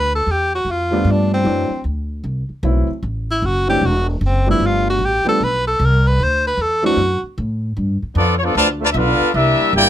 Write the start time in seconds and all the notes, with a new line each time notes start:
Already playing: D2 B4
0.15 A4
0.26 E2
0.31 G4
0.55 F#4
0.65 F2
0.71 F4
0.91 F3 G3 A3 B3 D4
1.05 G2
1.11 D4
1.34 C4
1.44 F#2 E3 F#3 A3 C4 D4
1.70 muted upright bass stroke
1.84 D2
2.24 C2
2.49 muted upright bass stroke
2.63 B1 E3 F#3 A3 C4 E4
2.89 muted upright bass stroke
3.03 A1
3.31 E4
3.42 F#1 F#4
3.67 E3 F#3 A3 C4 D4 G4
3.81 E1
3.86 F#4
4.10 A3
4.21 F#1
4.26 C4
4.46 F3 G3 A3 B3 D4
4.51 E4
4.60 G1
4.66 F4
4.90 F#4
4.99 A1
5.05 G4
5.24 F3 G3 A3 B3 D4, muted upright bass stroke
5.29 A4
5.40 B1 B4
5.67 A4
5.79 C2
5.85 A#4
6.07 B4
6.20 D2
6.24 C5
6.47 B4
6.57 E2
6.62 A4
6.82 E3 F#3 A3 C4 D4 F#4
6.96 F#2
7.22 muted upright bass stroke
7.38 A2
7.77 G2
8.02 muted upright bass stroke
8.15 F2 F3 B3 D4 F4 A4 D5
8.37 C#5
8.43 F3 B3 D4 F4 A4 D5
8.55 D2 D3 F3 A3 F4 B4 D5 A5
8.81 D3 F3 A3 F4 B4
8.85 D5 A5
8.92 B1 B3 D4 F4 E5
8.97 D4 A4 B4 F5
9.20 muted upright bass stroke
9.33 C2 G3 D4 E4 G4 A#4 D#5 E5
9.37 A#3
9.59 muted upright bass stroke
9.73 G1 A#3 E4 G4 A#4 D5 G5